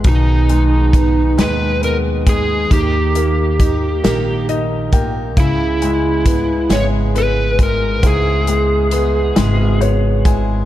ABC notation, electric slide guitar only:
X:1
M:6/8
L:1/8
Q:3/8=45
K:C#dor
V:1 name="Electric slide guitar"
D3 B A G | =G4 z2 | E3 c B A | G4 z2 |]